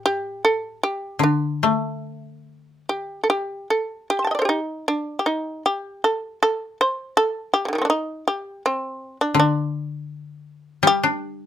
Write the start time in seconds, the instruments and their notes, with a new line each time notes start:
Already playing: koto A2
0.06 shamisen G4
0.45 shamisen A4
0.83 shamisen G4
1.19 koto D3
1.24 shamisen D4
1.63 koto A3
2.89 shamisen G4
3.24 shamisen A4
3.30 shamisen G4
3.70 shamisen A4
4.10 shamisen G4
4.19 shamisen C6
4.24 shamisen G5 A5
4.31 shamisen D5 D#5
4.39 shamisen A4 C5
4.45 shamisen D#4 G4
4.88 shamisen D4
5.19 shamisen G4
5.26 shamisen D#4
5.66 shamisen G4
6.04 shamisen A4
6.43 shamisen A4
6.81 shamisen C5
7.17 shamisen A4
7.54 shamisen G4
7.65 shamisen C3 D3
7.73 shamisen D#3 G3
7.78 shamisen A3 C4
7.85 shamisen D4
7.90 shamisen D#4
8.28 shamisen G4
8.66 shamisen C4
9.21 shamisen D4
9.34 koto D3
9.40 shamisen D4
10.83 koto G3
10.87 shamisen G4
11.04 koto D4